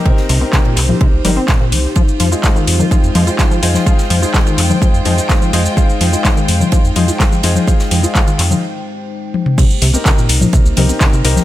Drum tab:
CC |----------------|----------------|----------------|----------------|
RD |x-x-xxx-x-x-x-x-|x-x-x-x-x-xxx-x-|x-x-xxx-x-x-x-x-|x-x-x-x-x-xxx-x-|
HH |--o---o---o---o-|--o---o---o---o-|--o---o---o---o-|--o---o---o---o-|
SH |----------------|xx-xxx-xxx-xxx-x|xx-xxx-xxx-xxx-x|xx-xxx-xxx-xxx-x|
CP |----x-x-----x---|----x-------x---|----x-x-----x---|----x-------x---|
SD |-o--o-------o---|--o-o-------o--o|-o--o-------o---|--o-o-------o---|
T1 |----------------|----------------|----------------|----------------|
T2 |----------------|----------------|----------------|----------------|
CG |-------O--O-----|-------O--O----O|-------O--O-----|-------O--O----O|
BD |o---o---o---o---|o---o---o---o---|o---o---o---o---|o---o---o---o---|

CC |----------------|x---------------|
RD |x-x-xxx---------|x-x-x-x-x-xxx-x-|
HH |--o---o---------|--o---o---o---o-|
SH |xx-xxx-x--------|xx-xxx-xxx-xxx-x|
CP |----x-x---------|----x-------x---|
SD |-o--o-----------|--o-o-------o--o|
T1 |--------------o-|----------------|
T2 |---------------o|----------------|
CG |-------O--------|-------O--O----O|
BD |o---o-----------|o---o---o---o---|